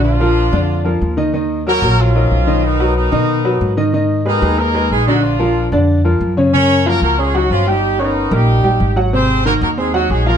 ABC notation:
X:1
M:4/4
L:1/8
Q:1/4=185
K:Ebm
V:1 name="Grand piano"
[=D,=D=d] [F,FB]2 [D,Dd]2 [F,FB]2 [E,Ee] | [E,Ee]2 [G,GB] [G,GB]2 [G,EB]2 [E,Ee]- | [E,Ee] [^F,^F=B]2 [^D,^D^d]2 [F,FB]2 [D,Dd] | [E,Ee]2 [A,Ac] [A,Ac]2 [A,Ac]2 [=D,=D=d]- |
[=D,=D=d] [F,FB]2 [D,Dd]2 [F,FB]2 [_D,_D_d] | [D,Dd]2 [F,Ff]2 [Ddd'] [G,Gg]2 [=G,=G=g]- | [=G,=G=g] [Ddd']2 [B,Bb]2 [G,Gg]2 [_G,_G_g] | [=C,=C=c]2 [E,Ee]2 [Cc=c'] [G,Gg]2 [F,Ff] |]
V:2 name="Horn section"
[F,=DF]6 z2 | z2 [B,GB]2 [F,DF]4 | [^D,=B,^D]2 [D,B,D]4- [D,B,D] z | z2 [E,CE]2 [B,EB]2 [A,EA] [G,EG] |
[F,=DF]3 z4 z | [DBd]2 [B,GB] [B,GB] [A,FA] [G,EG] [F,DF] [=G,E=G]- | [=G,E=G] [E,CE]2 [G,EG]4 z | [=CA=c]2 [B,GB] [B,GB] [A,EA] [G,EG] [A,EA] [B,FB] |]
V:3 name="Upright bass" clef=bass
B,,,3 F,,3 E,,2- | E,,3 B,,,3 C,,2- | C,,3 =B,,3 A,,2- | A,,3 E,,3 B,,,2- |
B,,,3 F,,3 G,,2- | G,,3 D,,3 =G,,,2- | =G,,,3 B,,,2 B,,, A,,,2- | A,,,3 E,,3 B,,,2 |]